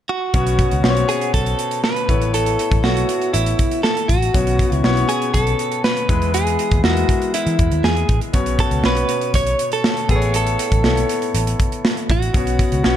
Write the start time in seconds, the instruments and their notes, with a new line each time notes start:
0.09 clean electric guitar F#4
0.34 picked electric bass B1, grand piano B2 B3 C#4 F#4 C#5, kick, closed hi-hat
0.47 closed hi-hat
0.59 kick, closed hi-hat
0.71 picked electric bass C#2, closed hi-hat
0.83 picked electric bass B1, grand piano B3 C#4 F#4 C5, snare
0.90 grand piano C#5
0.97 closed hi-hat
1.09 clean electric guitar G#4, closed hi-hat
1.21 closed hi-hat
1.34 picked electric bass B1, clean electric guitar A4, kick, closed hi-hat
1.46 closed hi-hat
1.59 closed hi-hat
1.71 closed hi-hat
1.84 clean electric guitar B4, snare
1.96 closed hi-hat
2.09 picked electric bass A1, grand piano A2 B3 E4 A4 C#5, kick, closed hi-hat
2.22 closed hi-hat
2.34 clean electric guitar A4, closed hi-hat
2.46 closed hi-hat
2.59 closed hi-hat
2.71 picked electric bass A1, kick, closed hi-hat
2.84 picked electric bass B1, grand piano B3 E4 A4 C#5, clean electric guitar F#4, snare
2.97 closed hi-hat
3.09 closed hi-hat
3.22 closed hi-hat
3.33 picked electric bass A1, clean electric guitar E4, closed hi-hat
3.46 closed hi-hat
3.59 kick, closed hi-hat
3.71 closed hi-hat
3.83 clean electric guitar A4, snare
3.97 closed hi-hat
4.08 picked electric bass A1, clean electric guitar F#4, kick, closed hi-hat
4.22 closed hi-hat
4.34 picked electric bass B1, grand piano B2 B3 C#4 F#4 C#5, kick, closed hi-hat
4.47 closed hi-hat
4.59 kick, closed hi-hat
4.72 picked electric bass C#2, closed hi-hat
4.76 clean electric guitar E4
4.84 picked electric bass B1, grand piano B3 C#4 F#4 C#5, snare
4.97 closed hi-hat
5.09 clean electric guitar G#4, closed hi-hat
5.22 closed hi-hat
5.34 picked electric bass B1, clean electric guitar A4, kick, closed hi-hat
5.47 closed hi-hat
5.59 closed hi-hat
5.72 closed hi-hat
5.84 clean electric guitar B4, snare
5.97 closed hi-hat
6.09 picked electric bass E2, grand piano E3 G#3 B3 E4 B4, kick, closed hi-hat
6.22 closed hi-hat
6.34 clean electric guitar G#4, closed hi-hat
6.47 closed hi-hat
6.59 closed hi-hat
6.71 picked electric bass D#2, kick, closed hi-hat
6.84 picked electric bass E2, grand piano G#3 B3 E4 A#4, clean electric guitar F#4, snare
6.91 grand piano B4
6.97 closed hi-hat
7.09 kick, closed hi-hat
7.22 closed hi-hat
7.34 clean electric guitar E4, closed hi-hat
7.47 picked electric bass E3, closed hi-hat
7.59 picked electric bass E2, kick, closed hi-hat
7.71 picked electric bass D#2, closed hi-hat
7.84 picked electric bass E2, clean electric guitar G#4, snare
7.97 closed hi-hat
8.09 picked electric bass A1, kick, closed hi-hat
8.21 closed hi-hat
8.33 picked electric bass B1, grand piano B2 B3 C#4 F#4 C#5, kick, closed hi-hat
8.46 closed hi-hat
8.59 clean electric guitar A4, kick, closed hi-hat
8.71 picked electric bass C#2, closed hi-hat
8.83 picked electric bass B1, grand piano B3 C#4 F#4 C#5, clean electric guitar B4, snare
8.97 closed hi-hat
9.09 closed hi-hat
9.21 closed hi-hat
9.34 picked electric bass B1, clean electric guitar C#5, kick, closed hi-hat
9.47 closed hi-hat
9.59 closed hi-hat
9.72 clean electric guitar A4, closed hi-hat
9.84 snare
9.97 closed hi-hat
10.09 picked electric bass A1, grand piano A2 B3 E4 A4 B4, clean electric guitar G#4, kick, closed hi-hat
10.16 grand piano C#5
10.22 closed hi-hat
10.34 clean electric guitar A4, closed hi-hat
10.47 closed hi-hat
10.59 closed hi-hat
10.72 picked electric bass A1, kick, closed hi-hat
10.84 picked electric bass B1, grand piano B3 E4 A4 C#5, snare
10.97 closed hi-hat
11.09 closed hi-hat
11.22 closed hi-hat
11.34 picked electric bass A1, closed hi-hat
11.47 closed hi-hat
11.60 kick, closed hi-hat
11.72 closed hi-hat
11.85 snare
11.97 closed hi-hat
12.09 picked electric bass A1, clean electric guitar F#4, kick, closed hi-hat
12.22 closed hi-hat
12.34 picked electric bass B1, grand piano B2 B3 C#4 F#4 C#5, kick, closed hi-hat
12.47 closed hi-hat
12.59 kick, closed hi-hat
12.72 picked electric bass C#2, closed hi-hat
12.83 picked electric bass B1, grand piano B3 C#4 F#4 C#5, snare